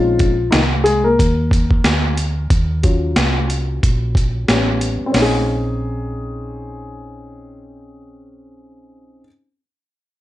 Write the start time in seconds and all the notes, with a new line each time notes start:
Already playing: A#1 F3 G#3 C4 C#4 D#4 F4
0.19 kick, closed hi-hat
0.51 C2 D#3 D#4, snare, closed hi-hat
0.84 G#3 G#4, closed hi-hat
1.04 A#3 A#4
1.19 D#2, kick, closed hi-hat
1.51 kick, closed hi-hat
1.71 kick
1.84 D2, snare, closed hi-hat
2.17 closed hi-hat
2.50 D#2, kick, closed hi-hat
2.83 F#3 C#4 F4, kick, closed hi-hat
3.16 C2, snare, closed hi-hat
3.50 closed hi-hat
3.83 A#1, kick, closed hi-hat
4.15 kick, closed hi-hat
4.48 A1 G3 B3 C#4, snare, closed hi-hat
4.81 closed hi-hat
5.01 muted fingered electric bass stroke
5.06 C4
5.12 A#1 C#4, snare, open hi-hat
5.17 D#4
5.22 G#4